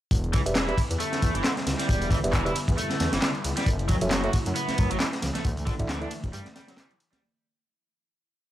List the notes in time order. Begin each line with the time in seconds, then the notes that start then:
0.11 E1 D3 G3 B3 E4, kick, closed hi-hat
0.24 closed hi-hat
0.33 D2 E3, kick, closed hi-hat, ride
0.46 E1 G4 B4 D5 E5, closed hi-hat
0.55 E3, snare, clap, closed hi-hat
0.68 E4 G4 B4 D5 E5, closed hi-hat
0.78 kick, closed hi-hat, ride
0.90 E2, closed hi-hat
1.00 A3, closed hi-hat
1.12 snare, closed hi-hat
1.22 E2, kick, closed hi-hat, ride
1.35 G1 E3, closed hi-hat
1.44 D3, snare, clap, closed hi-hat
1.57 snare, closed hi-hat
1.67 C#2, snare, closed hi-hat, ride
1.79 G3, snare, closed hi-hat
1.89 E1, kick, closed hi-hat
2.01 closed hi-hat
2.10 D2 E3, kick, closed hi-hat, ride
2.24 E1 G4 B4 D5 E5, closed hi-hat
2.33 E3, kick, clap, closed hi-hat
2.46 E4 G4 B4 D5 E5, closed hi-hat
2.55 closed hi-hat, ride
2.68 E2, kick, closed hi-hat
2.78 A3, closed hi-hat
2.90 snare, closed hi-hat
3.00 E2, snare, closed hi-hat, ride
3.13 G1 E3, snare, closed hi-hat
3.22 D3, snare, clap, closed hi-hat
3.35 closed hi-hat
3.44 C#2, closed hi-hat, ride
3.57 G3, snare, closed hi-hat
3.66 F#1 C#3 F#3 A3, kick, closed hi-hat
3.79 closed hi-hat
3.88 E2 F#3, kick, closed hi-hat, ride
4.01 F#1 F#4 A4 C#5 E5, closed hi-hat, low conga
4.11 F#3, snare, clap, closed hi-hat, high conga
4.24 F#4 A4 C#5 E5, closed hi-hat
4.33 kick, closed hi-hat, ride
4.46 F#2, closed hi-hat
4.55 B3, closed hi-hat
4.68 snare, closed hi-hat, high conga
4.78 F#2, kick, closed hi-hat, ride
4.90 A1 F#3, closed hi-hat
5.00 E3, snare, clap, closed hi-hat
5.13 snare, closed hi-hat
5.22 C#2, snare, closed hi-hat, ride, low conga
5.35 A3, snare, closed hi-hat, high conga, low conga
5.44 D2 D3 E3 A3, kick, closed hi-hat
5.57 closed hi-hat
5.66 A1 D3, kick, closed hi-hat, ride
5.79 D2 E4 A4 D5 E5, kick, closed hi-hat, low conga
5.89 D3, snare, clap, closed hi-hat, high conga
6.01 D4 E4 A4 D5 E5, closed hi-hat
6.11 closed hi-hat, ride
6.24 D1, kick, closed hi-hat
6.33 G2 G3, closed hi-hat
6.45 snare, closed hi-hat, high conga
6.56 G3, snare, closed hi-hat, ride
6.68 F#3, snare, closed hi-hat
6.77 G3, snare, clap, closed hi-hat
6.91 closed hi-hat
7.00 closed hi-hat, ride
7.12 G3, snare, closed hi-hat, high conga